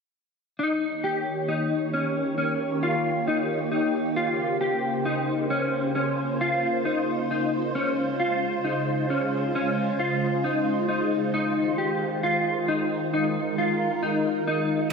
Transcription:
0.59 D#3 A#3 D#4 G4 C#5
1.04 G4
1.48 D#4
1.93 C#4
2.38 C#4
2.83 F4
3.28 D#4
3.72 D#4
4.16 C#3 F4 C5
4.61 G4
5.05 D#4
5.50 C#4
5.95 C#4 F4
6.41 F4
6.85 D#4
7.31 D#4
7.75 C#3 G#3 C#4
8.20 F4
8.64 D#4
9.10 C#4
9.55 C#4
9.99 F4
10.44 D#4
10.88 D#4
11.34 D#3 D#4
11.78 G4
12.23 F4
12.68 D#4
13.13 D#4 A#4
13.58 F4
14.03 D#4
14.47 D#4

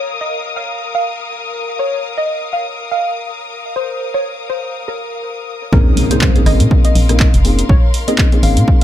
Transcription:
Already playing: A#4 C#5 F5 D#6
0.21 D#5
0.56 F5
0.95 F5
1.79 C#5
2.18 D#5
2.53 F5
2.91 F5
3.76 C5
4.14 C#5
4.50 C5
4.88 A#4
5.73 A#1 A#3 C4 C#4 D#4 G#4 A#4, kick, impact
5.97 F5, open hi-hat
6.11 A#3 C4 C#4 D#4 G#4 C5, closed hi-hat
6.21 kick, clap
6.36 A#3 C4 C#4 D#4 G#4, closed hi-hat
6.43 G#1 D#5 C6, cross-stick, open hi-hat
6.60 A#2, closed hi-hat
6.71 kick
6.85 D#5, closed hi-hat
6.95 A#1, open hi-hat
7.09 A#3 C4 C#4 D#4 A#4, cross-stick, closed hi-hat
7.20 kick, clap
7.34 F1, closed hi-hat
7.45 A#3 C4 C#4 D#4 G#4, open hi-hat
7.59 closed hi-hat
7.69 A#1 C#5, kick
7.94 open hi-hat
8.08 A#3 C4 C#4 D#4 G#4 D#5, closed hi-hat
8.18 kick, clap
8.32 A#3 C4 C#4 D#4 G#4, closed hi-hat
8.43 G#1 F5, open hi-hat
8.57 A#2, closed hi-hat
8.68 kick

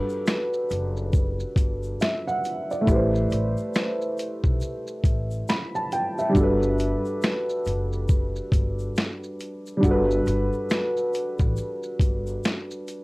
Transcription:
Already playing: G3 D4 F#4 A4 B4
0.09 shaker
0.26 finger snap, snare, shaker
0.53 shaker
0.70 F#1, closed hi-hat, shaker
0.71 shaker
0.97 shaker
1.13 kick, shaker
1.40 shaker
1.56 G1, kick, closed hi-hat, shaker
1.83 shaker
2.00 E5, finger snap, shaker
2.02 snare, shaker
2.27 F#5, shaker
2.44 closed hi-hat, shaker
2.70 D5, shaker
2.81 A3 E4
2.87 A1 G4, kick, shaker
2.91 B4 C5
3.15 shaker
3.30 A1, closed hi-hat, shaker
3.32 shaker
3.57 shaker
3.74 shaker
3.75 finger snap, snare, shaker
4.01 shaker
4.17 closed hi-hat, shaker
4.19 shaker
4.44 B1, kick, shaker
4.60 shaker
4.87 shaker
5.04 A1, kick, closed hi-hat, shaker
5.31 shaker
5.48 B5, finger snap, shaker
5.50 snare, shaker
5.75 A5, shaker
5.92 G5, closed hi-hat, shaker
6.18 E5, shaker
6.29 G3 D4
6.35 G1 F#4, kick, shaker
6.40 A4 B4
6.63 shaker
6.78 closed hi-hat, shaker
6.80 shaker
7.05 shaker
7.22 shaker
7.23 finger snap, snare, shaker
7.49 shaker
7.65 F#1, closed hi-hat, shaker
7.68 shaker
7.93 shaker
8.08 kick, shaker
8.35 shaker
8.52 G1, kick, closed hi-hat, shaker
8.79 shaker
8.96 finger snap, shaker
8.98 snare, shaker
9.23 shaker
9.40 closed hi-hat, shaker
9.66 shaker
9.77 G3 D4
9.83 G1 F#4, kick, shaker
9.87 A4 B4
10.11 shaker
10.26 G1, closed hi-hat, shaker
10.28 shaker
10.53 shaker
10.70 finger snap, snare, shaker
10.97 shaker
11.13 closed hi-hat, shaker
11.15 shaker
11.39 A1, kick, shaker
11.40 shaker
11.56 shaker
11.83 shaker
11.99 G1, kick, closed hi-hat, shaker
12.27 shaker
12.44 finger snap, shaker
12.45 snare, shaker
12.71 shaker
12.87 closed hi-hat, shaker

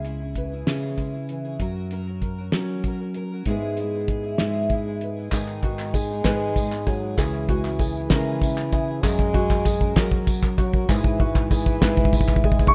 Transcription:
Already playing: C#2 C#3
0.05 G#3 C#4 E4 G#4, closed hi-hat
0.20 C#4 E4 G#4
0.35 B4, kick, closed hi-hat
0.52 C#4 E4 G#4
0.67 C#3 G#3 C#4 E4 G#4, snare, closed hi-hat
0.98 G#3 C#4 E4 G#4, kick, closed hi-hat
1.13 C#4 E4 G#4
1.29 E3, closed hi-hat
1.45 C#4 E4 G#4
1.59 F#2 F#3 C#4 F#4 A#4, kick, closed hi-hat
1.91 F#3 C#4 F#4 A#4, closed hi-hat
2.07 C#4 F#4 A#4
2.22 A#4, kick, closed hi-hat
2.38 C#4 F#4 A#4
2.52 F#3 C#4 F#4 A#4, snare, closed hi-hat
2.84 F#3 C#4 F#4 A#4, kick, closed hi-hat
3.00 C#4 F#4 A#4
3.14 A#4, closed hi-hat
3.31 C#4 F#4 A#4
3.46 G#2 E3 G#3 B3 E4 G#4, kick, closed hi-hat
3.77 G#3 B3 E4 G#4, closed hi-hat
3.93 G#3 B3 E4 G#4
4.08 G#4, kick, closed hi-hat
4.23 G#3 B3 E4 G#4
4.38 G#2 E3 G#3 B3 E4 G#4, snare, closed hi-hat
4.70 G#3 B3 E4 G#4, kick, closed hi-hat
4.86 G#3 B3 E4 G#4
5.01 B4, closed hi-hat
5.16 G#3 B3 E4 G#4
5.31 G#2 D#3 G#3 B3 D#4 G#4, kick, clap, closed hi-hat, tambourine
5.48 clap
5.63 G#3 B3 D#4 F#4 G#4, kick, closed hi-hat
5.79 G#3 B3 D#4 G#4, clap, tambourine
5.94 G#3 G#4, kick, closed hi-hat, tambourine
6.10 G#3 B3 D#4 G#4
6.24 G#2 D#3 G#3 B3 D#4 G#4 B4, kick, snare, clap, closed hi-hat
6.55 G#3 B3 D#4 G#4, kick, closed hi-hat, tambourine
6.71 G#3 B3 D#4 G#4, clap, tambourine
6.87 F#3 G#4, kick, clap, closed hi-hat, tambourine
7.02 G#3 B3 D#4 G#4
7.17 C#2 C#3 E3 G#3 C#4 E4 G#4, kick, clap, closed hi-hat, tambourine
7.34 clap
7.49 G#3 C#4 E4 F#4 G#4, kick, closed hi-hat
7.64 C#4 E4 G#4, clap, tambourine
7.79 G#4, kick, closed hi-hat, tambourine
7.95 C#4 E4 G#4
8.09 C#3 G#3 C#4 E4 G#4 A#4, kick, snare, clap, closed hi-hat
8.41 G#3 C#4 E4 G#4, kick, closed hi-hat, tambourine
8.56 C#4 E4 G#4, clap
8.72 G#4, kick, clap, closed hi-hat, tambourine
8.88 C#4 E4 G#4
9.03 F#2 F#3 G#3 C#4 F#4 G#4 A#4, kick, clap, closed hi-hat, tambourine
9.19 kick, clap
9.34 F#3 C#4 F#4 A#4, kick, closed hi-hat
9.50 C#4 F#4 A#4, kick, clap, tambourine
9.65 G#4, kick, closed hi-hat, tambourine
9.80 C#4 F#4 A#4, kick
9.96 F#3 C#4 F#4 A#4, kick, snare, clap, closed hi-hat
10.12 kick
10.27 F#3 C#4 F#4 A#4, kick, closed hi-hat, tambourine
10.43 C#4 F#4 A#4, kick, clap, tambourine
10.58 F#3 F#4, kick, clap, closed hi-hat, tambourine
10.73 C#4 F#4 A#4, kick
10.89 G#2 E3 G#3 B3 E4 G#4 B4, kick, clap, tambourine
11.04 kick
11.19 G#3 B3 E4 F#4 B4, kick
11.34 G#3 B3 E4 B4, kick, clap
11.51 G#4, kick, clap, tambourine
11.66 G#3 B3 E4 B4, kick
11.82 G#2 E3 G#3 B3 E4 B4, kick, snare, clap, tambourine
11.97 kick, tambourine
12.05 kick
12.13 G#3 B3 E4 B4, kick, clap, tambourine
12.21 kick
12.28 G#3 B3 E4 B4, kick, clap
12.36 kick
12.44 G#3 G#4, kick
12.52 kick
12.59 G#3 B3 E4 B4, kick, clap, tambourine
12.67 C#6, kick

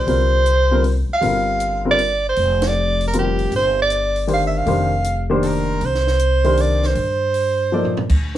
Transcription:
Already playing: C5
0.07 C2 D3 G3 C4 F4 A#4, open hi-hat
0.46 closed hi-hat
0.71 D3 G3 C4 F4 A#4
0.84 open hi-hat
1.09 F5, muted upright bass stroke
1.21 G1 D3 G3 C4 F4 A#4, open hi-hat
1.60 closed hi-hat
1.85 D3 G3 C4 F4 A#4
1.91 D5
1.99 open hi-hat
2.29 C5
2.36 F1, open hi-hat
2.62 snare, ride
2.67 D5
3.01 open hi-hat
3.07 A#4
3.13 D3 G3 C4 F4 A#4, closed hi-hat
3.18 G4
3.39 open hi-hat
3.52 G1 C5, open hi-hat
3.82 D5
3.90 closed hi-hat
4.16 open hi-hat
4.27 D#3 A3 D4 G4 C5, open hi-hat
4.33 F5
4.47 E5
4.58 F5
4.66 F1 D#3 A3 D4 G4 C5, open hi-hat
5.04 closed hi-hat
5.30 D#3 A#3 D4 G4 C5
5.42 A4, open hi-hat
5.47 A#4
5.81 C2, open hi-hat
5.85 C5
5.94 snare
6.07 snare
6.19 closed hi-hat
6.44 D#3 A3 D4 G4 C5, open hi-hat
6.57 D5, open hi-hat
6.83 C5, snare
6.95 G2, open hi-hat
7.34 open hi-hat
7.72 F3 A#3 D#4 A4 D5
7.85 floor tom
7.97 floor tom
8.09 D2, kick, crash
8.35 snare

